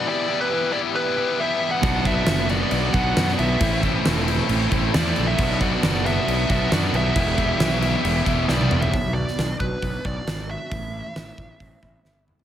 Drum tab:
CC |----------------|x-x-x-x-x-x-x-x-|x-x-x-x-x-x-x-x-|x-x-x-x-x-x-x-x-|
HH |----------------|----------------|----------------|----------------|
SD |----------------|----o-------oo--|----o-------o---|----o-------o---|
T1 |----------------|----------------|----------------|----------------|
T2 |----------------|----------------|----------------|----------------|
FT |----------------|----------------|----------------|----------------|
BD |----------------|o-o-------o-----|o-o-------o-----|o-o-------o-----|

CC |x-x-x-x-x-x-----|----------------|----------------|
HH |----------------|o---o---o---o---|o---o---o-------|
SD |----o-------o---|---oo-------o---|----o-------o---|
T1 |-------------o--|----------------|----------------|
T2 |--------------o-|----------------|--------------o-|
FT |---------------o|----------------|---------------o|
BD |o-o-------o-----|o-----o-o-o-----|o-----o-o-o-----|